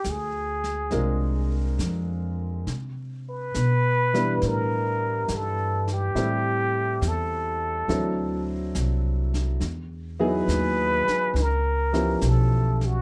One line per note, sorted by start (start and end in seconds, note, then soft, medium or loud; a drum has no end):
0.00 0.11 G4 medium
0.04 0.90 D2 medium
0.04 snare soft
0.04 hi-hat pedal soft
0.10 1.54 G#4 medium
0.64 snare soft
0.91 1.77 C2 medium
0.91 2.27 G#3 medium
0.91 2.28 C4 soft
0.91 2.28 D4 medium
0.91 2.28 F4 medium
0.91 2.28 A#4 medium
0.91 brush sweep medium
0.91 snare soft
1.78 2.64 F2 medium
1.78 snare medium
1.78 hi-hat pedal soft
2.67 3.52 C3 medium
2.67 brush sweep soft
2.67 snare soft
3.30 4.48 B4 loud
3.54 4.40 B2 medium
3.54 snare soft
3.54 hi-hat pedal medium
4.14 4.39 G3 medium
4.14 4.40 B3 medium
4.14 4.39 D4 medium
4.14 4.39 E4 medium
4.14 4.40 B4 medium
4.14 snare soft
4.42 5.27 A2 medium
4.42 brush sweep soft
4.42 snare soft
4.47 5.37 A#4 medium
5.28 6.14 G2 medium
5.28 snare medium
5.28 hi-hat pedal soft
5.36 5.92 A4 medium
5.88 snare soft
5.93 7.10 G4 medium
6.15 7.00 A2 medium
6.15 6.69 G3 medium
6.15 6.69 A3 medium
6.15 6.69 C4 medium
6.15 6.69 E4 medium
6.15 6.69 A4 medium
6.15 brush sweep soft
6.15 snare soft
7.01 7.86 E2 medium
7.01 snare medium
7.01 hi-hat pedal soft
7.08 8.51 A4 medium
7.88 8.73 D2 medium
7.88 8.42 F#3 medium
7.88 8.42 C4 medium
7.88 8.43 D4 medium
7.88 8.43 E4 medium
7.88 8.43 A4 medium
7.88 brush sweep soft
7.88 snare soft
8.75 9.59 C2 medium
8.75 snare medium
8.75 hi-hat pedal medium
9.34 snare soft
9.60 10.45 E2 medium
9.60 brush sweep medium
9.60 snare soft
10.20 10.45 F#3 medium
10.20 10.45 B3 medium
10.20 10.45 D#4 medium
10.20 10.45 E4 medium
10.20 10.45 G#4 medium
10.24 11.43 B4 loud
10.48 11.03 D#2 loud
10.48 snare medium
10.48 hi-hat pedal soft
11.08 muted upright bass stroke soft
11.08 snare soft
11.34 12.18 C#2 medium
11.34 brush sweep medium
11.34 snare medium
11.42 12.30 A#4 medium
11.93 12.18 F3 medium
11.93 12.18 B3 medium
11.93 12.19 C#4 medium
11.93 12.19 E4 medium
11.93 12.19 G4 medium
11.93 snare soft
12.21 13.02 B1 medium
12.21 snare medium
12.21 hi-hat pedal medium
12.28 12.87 A4 medium
12.81 snare soft
12.86 13.02 F#4 medium